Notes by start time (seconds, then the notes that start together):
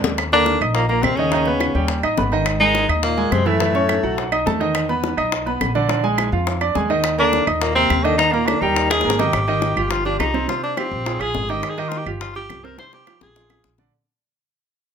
Already playing: D#2 G#3 C4 D4
0.04 cowbell, low bongo
0.18 high bongo, claves
0.32 D3 A#3 D4 A#4 A#5, high bongo
0.46 high bongo
0.61 A#1 D#4 D#5 D#6, claves
0.75 A#2 A#3, high bongo
0.89 A#2 A#3 A#4 A#5, high bongo
1.03 D#2 C3 C4, high bongo, low bongo, claves
1.16 C#3 D#3 C#4 D#4 D#5, high bongo
1.32 D#3 D#4 D#5, high bongo
1.45 B3 B4 B5, high bongo
1.60 high bongo, claves
1.75 D#2 G3 G4 G5
1.88 high bongo
2.03 A1 D#4 D#5 D#6, high bongo, claves
2.18 G#1 B3 B4 B5, high bongo, low bongo
2.32 D#3 D#4 D#5, high bongo
2.46 high bongo, claves
2.60 D#3 G#3 D#4 G#4 G#5, high bongo
2.75 high bongo
2.89 D#2 D#4 D#5 D#6, claves
3.03 A#2 A#3, high bongo
3.17 G#3 G#4 G#5, high bongo
3.32 F#2 C3 C4, high bongo, low bongo, claves
3.46 A2 E3 A3 E4 E5, high bongo
3.60 E3 E4 E5, high bongo
3.75 C#4 C#5 C#6, high bongo
3.89 high bongo, claves
4.03 B1 F#3 F#4 F#5
4.18 high bongo
4.32 D#4 D#5 D#6, high bongo, claves
4.46 E2 A3 A4 A5, high bongo, low bongo
4.60 D#3 D#4 D#5, high bongo
4.75 high bongo, claves
4.89 B3 B4 B5, high bongo
5.04 high bongo
5.17 B1 D#4 D#5 D#6, claves
5.32 high bongo
5.46 B3 B4 B5, high bongo
5.61 A#1, high bongo, low bongo, claves
5.75 D3 D4 D5, high bongo
5.88 D3 D4 D5, high bongo
6.03 G#3 G#4 G#5, high bongo
6.18 high bongo, claves
6.32 F2 F3 F4 F5
6.47 high bongo
6.61 D4 D5 D6, high bongo, claves
6.75 D#2 G#3 G#4 G#5, high bongo, low bongo
6.90 D#3 D#4 D#5, high bongo
7.04 high bongo, claves
7.18 D3 A#3 D4 A#4 A#5, high bongo
7.33 high bongo
7.47 D#2 D#4 D#5 D#6, claves
7.61 A#2 A#3, high bongo
7.75 C3 A#3 C4 A#4 A#5, high bongo
7.90 D#2, high bongo, low bongo, claves
8.04 D3 D#3 D4 D#4 D#5, high bongo
8.18 D#3 D#4 D#5, high bongo
8.32 A#2 A#3 A#4 A#5, high bongo
8.47 D3 D4, high bongo, claves
8.61 D#2 D#3 G3 D#4 G4 G5
8.76 high bongo
8.90 D#4 G#4 D#5 D#6, high bongo, claves
9.01 G#1 A#3, high bongo
9.05 A#4 A#5
9.10 low bongo
9.19 D#3 D#4 G4 D#5, low bongo
9.33 G#1, high bongo, claves
9.48 D#3 D#4 D#5, high bongo
9.62 high bongo
9.76 G1 F3 F4 G4, claves
9.91 F4, high bongo
10.05 F3 D4 F4 G4, high bongo
10.19 C2 D#4, high bongo, low bongo, claves
10.34 C3 C4 C5, high bongo
10.48 C3 C4 F4 C5, high bongo
10.63 D4, high bongo
10.77 F3 C4 F4 G4, high bongo, claves
10.91 A#1
11.06 F3 F4 G#4, high bongo
11.20 A#1 F3 F4 G#4, high bongo, claves
11.34 G#1, high bongo, low bongo
11.49 D#3 D#4 G4 D#5, high bongo
11.63 high bongo, claves
11.70 G#4
11.78 D#3 D#4 G4 D#5, high bongo
11.88 F4, high bongo
11.98 G4
12.06 G1 F3 F4 G4, claves
12.21 F4, high bongo
12.35 F3 F4 G4, high bongo
12.49 C2, high bongo, low bongo, claves
12.64 C3 C4 A#4 C5, high bongo
12.78 C3 C4 C5, high bongo
12.93 G4, high bongo
13.06 F3 F4 G4, high bongo, claves
13.21 A#1 G#4, low bongo
13.36 F3 F4 G#4, low bongo
13.50 F3 F4 G#4, low bongo, claves
13.64 A#1, low bongo
13.78 D3 D4 D5, low bongo